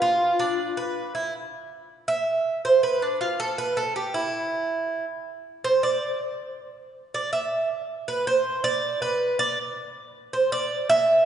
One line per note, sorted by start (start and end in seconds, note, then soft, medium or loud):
0.00 0.91 F4 loud
0.00 0.38 F4 medium
0.39 0.76 D4 medium
0.77 1.13 B4 medium
1.15 1.33 E4 medium
2.08 2.60 E5 medium
2.65 2.83 C5 medium
2.83 3.01 B4 medium
3.02 3.20 D4 medium
3.21 3.39 F4 medium
3.40 3.58 A4 medium
3.58 3.77 B4 medium
3.77 3.95 A4 medium
3.96 4.14 G4 medium
4.14 5.04 E4 medium
5.64 5.83 C5 medium
5.83 6.18 D5 medium
7.14 7.32 D5 medium
7.33 7.68 E5 medium
8.08 8.26 B4 medium
8.27 8.62 C5 medium
8.64 8.99 D5 loud
9.02 9.37 B4 medium
9.39 9.58 D5 loud
10.33 10.52 C5 medium
10.52 10.87 D5 loud
10.90 11.25 E5 loud